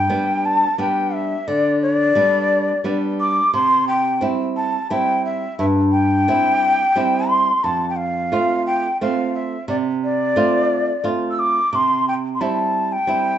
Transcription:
Already playing: quena G5
0.09 nylon-string guitar G3 B3 D4
0.45 quena A5
0.78 nylon-string guitar G3 B3 D4, quena G5
1.14 quena E5
1.48 nylon-string guitar D3, quena D5
1.82 quena D5
2.15 nylon-string guitar G3 B3 D4
2.84 nylon-string guitar G3 B3 D4
3.20 quena D6
3.54 nylon-string guitar C3, quena C6
3.88 quena G5
4.21 nylon-string guitar G3 C4 E4
4.57 quena A5
4.90 nylon-string guitar G3 C4 E4, quena G5
5.25 quena E5
5.58 nylon-string guitar G2, quena E5
5.92 quena G5
6.28 nylon-string guitar G3 C4 E4
6.96 nylon-string guitar G3 C4 E4
7.29 quena C6
7.64 nylon-string guitar F2, quena A5
7.90 quena G5
7.96 quena F5
8.32 nylon-string guitar A3 C4 F4
8.67 quena G5
9.01 nylon-string guitar A3 C4 F4, quena F5
9.34 quena E5
9.68 nylon-string guitar C3, quena D5
10.04 quena D5
10.36 nylon-string guitar A3 C4 F4
11.04 nylon-string guitar A3 C4 F4
11.31 quena E6
11.39 quena D6
11.73 nylon-string guitar C3, quena C6
12.08 quena G5
12.35 quena C6
12.41 nylon-string guitar G3 C4 E4, quena A5
12.92 quena G5
13.07 nylon-string guitar G3 C4 E4

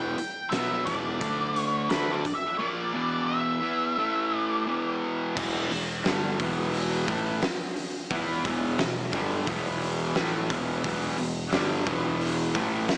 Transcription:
Already playing: picked electric bass E1, distorted electric guitar E2 B2 E3, lead electric guitar G5
0.17 muted picked electric bass stroke, muted distorted electric guitar stroke, closed hi-hat
0.50 picked electric bass B1, distorted electric guitar B2 F#3 B3, lead electric guitar E5, snare, closed hi-hat
0.85 picked electric bass E1, distorted electric guitar E2 B2 E3, lead electric guitar D5, kick, closed hi-hat
1.21 picked electric bass D2, distorted electric guitar D3 A3 D4, kick, closed hi-hat
1.56 lead electric guitar C#5, closed hi-hat
1.89 picked electric bass D2, distorted electric guitar D3 A3 D4, lead electric guitar B4, snare, closed hi-hat
2.11 lead electric guitar D5
2.25 muted distorted electric guitar stroke, muted picked electric bass stroke, kick, closed hi-hat
2.35 lead electric guitar E5
2.58 distorted electric guitar A#2 F3 A#3, lead electric guitar D5
2.94 distorted electric guitar E2 B2 E3
3.26 lead electric guitar E5
3.62 distorted electric guitar E3 B3 E4
3.98 distorted electric guitar A2 E3 A3
4.38 lead electric guitar D5
4.66 distorted electric guitar E2 B2 E3
5.36 picked electric bass E1, distorted electric guitar E2 B2 E3, kick, crash
5.71 picked electric bass E1, distorted electric guitar E2 B2, open hi-hat
6.05 picked electric bass G1, distorted electric guitar G2 D3 G3, snare, open hi-hat
6.39 picked electric bass E1, distorted electric guitar E2 B2 E3, kick, open hi-hat
6.74 open hi-hat
7.08 picked electric bass A1, distorted electric guitar A2 E3 A3, kick, open hi-hat
7.42 snare, open hi-hat
7.76 open hi-hat
8.10 picked electric bass E2, distorted electric guitar E3 B3 E4, kick, open hi-hat
8.45 picked electric bass E1, distorted electric guitar E2 B2 E3, kick, open hi-hat
8.78 picked electric bass E1, distorted electric guitar E2 B2, snare, open hi-hat
9.13 picked electric bass G1, distorted electric guitar G2 D3 G3, kick, open hi-hat
9.47 picked electric bass E1, distorted electric guitar E2 B2 E3, kick, open hi-hat
9.81 open hi-hat
10.15 picked electric bass A1, distorted electric guitar A2 E3 A3, snare, open hi-hat
10.50 picked electric bass E1, distorted electric guitar E2 B2 E3, kick, open hi-hat
10.84 picked electric bass E1, distorted electric guitar E2 B2 E3, kick, open hi-hat
11.18 picked electric bass E1, distorted electric guitar E2 B2, open hi-hat
11.52 picked electric bass G1, distorted electric guitar G2 D3 G3, snare, open hi-hat
11.87 picked electric bass E1, distorted electric guitar E2 B2 E3, kick, open hi-hat
12.21 open hi-hat
12.55 picked electric bass A1, distorted electric guitar A2 E3 A3, kick, open hi-hat
12.88 snare, open hi-hat

